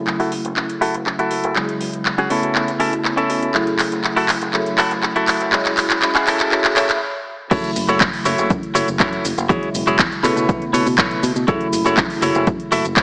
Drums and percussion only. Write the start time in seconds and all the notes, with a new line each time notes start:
0.07 clap
0.20 open hi-hat
0.32 open hi-hat
0.45 closed hi-hat
0.57 clap
0.70 closed hi-hat
0.82 open hi-hat
0.94 closed hi-hat
1.07 clap
1.19 closed hi-hat
1.31 open hi-hat
1.44 closed hi-hat
1.56 clap
1.69 closed hi-hat
1.81 open hi-hat
1.93 closed hi-hat
2.06 clap
2.18 closed hi-hat
2.30 open hi-hat
2.43 closed hi-hat
2.55 clap
2.68 closed hi-hat
2.80 open hi-hat
2.93 closed hi-hat
3.05 clap
3.18 closed hi-hat
3.30 open hi-hat
3.42 closed hi-hat
3.54 clap
3.67 closed hi-hat
3.79 clap, open hi-hat
3.92 closed hi-hat
4.04 clap
4.17 open hi-hat
4.29 clap, open hi-hat
4.42 closed hi-hat
4.53 clap
4.66 closed hi-hat
4.78 clap, open hi-hat
4.91 closed hi-hat
5.03 clap
5.16 closed hi-hat
5.28 clap, open hi-hat
5.41 closed hi-hat
5.52 clap
5.65 clap, closed hi-hat
5.77 clap, open hi-hat
5.90 clap, closed hi-hat
6.02 clap
6.15 clap, closed hi-hat
6.27 clap, open hi-hat
6.40 clap, closed hi-hat
6.52 clap
6.64 clap, closed hi-hat
6.76 clap, open hi-hat
6.89 clap, closed hi-hat
7.51 kick, closed hi-hat, crash, shaker
7.64 closed hi-hat
7.76 open hi-hat, shaker
7.89 closed hi-hat, shaker
8.01 kick, clap, closed hi-hat, shaker
8.13 open hi-hat
8.25 open hi-hat, shaker
8.38 closed hi-hat, shaker
8.50 kick, closed hi-hat, shaker
8.63 closed hi-hat
8.75 open hi-hat, shaker
8.88 closed hi-hat, shaker
9.00 kick, clap, closed hi-hat, shaker
9.13 closed hi-hat
9.25 open hi-hat, shaker
9.38 closed hi-hat, shaker
9.50 kick, closed hi-hat, shaker
9.63 closed hi-hat
9.75 open hi-hat, shaker
9.87 closed hi-hat, shaker
9.99 kick, clap, closed hi-hat, shaker
10.12 closed hi-hat
10.24 clap, open hi-hat, shaker
10.37 closed hi-hat, shaker
10.49 kick, closed hi-hat, shaker
10.62 closed hi-hat
10.74 open hi-hat, shaker
10.87 open hi-hat, shaker
10.98 kick, clap, closed hi-hat, shaker
11.11 closed hi-hat
11.23 open hi-hat, shaker
11.36 closed hi-hat, shaker
11.48 kick, closed hi-hat, shaker
11.61 closed hi-hat
11.73 open hi-hat, shaker
11.86 closed hi-hat, shaker
11.97 kick, clap, closed hi-hat, shaker
12.10 open hi-hat
12.22 open hi-hat, shaker
12.35 closed hi-hat, shaker
12.47 kick, closed hi-hat, shaker
12.60 closed hi-hat
12.72 open hi-hat, shaker
12.85 closed hi-hat, shaker
12.97 kick, clap, closed hi-hat, shaker